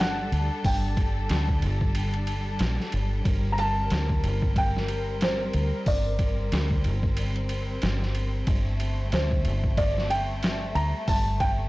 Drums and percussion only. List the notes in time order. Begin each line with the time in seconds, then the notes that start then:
0.00 snare, ride
0.32 ride
0.64 kick, open hi-hat
0.97 kick, ride
1.29 snare, ride
1.48 kick
1.62 ride
1.81 kick
1.95 ride
2.14 ride
2.27 ride
2.59 snare, ride
2.80 snare
2.92 ride
3.25 kick, ride
3.58 ride
3.90 snare, ride
4.09 kick
4.24 ride
4.42 kick
4.56 kick, ride
4.77 snare
4.88 ride
5.21 snare, ride
5.53 ride
5.86 kick, open hi-hat
6.19 kick, ride
6.52 snare, ride
6.71 kick
6.84 ride
7.03 kick
7.17 ride
7.36 ride
7.49 ride
7.82 snare, ride
8.02 snare
8.15 ride
8.47 kick, ride
8.80 ride
9.12 snare, ride
9.31 kick
9.45 ride
9.64 kick
9.77 kick, ride
9.98 snare
10.11 ride
10.43 snare, ride
10.75 ride
11.08 kick, open hi-hat
11.40 kick, ride